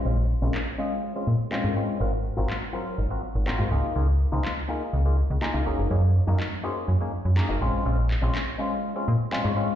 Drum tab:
CP |--x---x-|--x---x-|--x---x-|--x---x-|

CP |-xx---x-|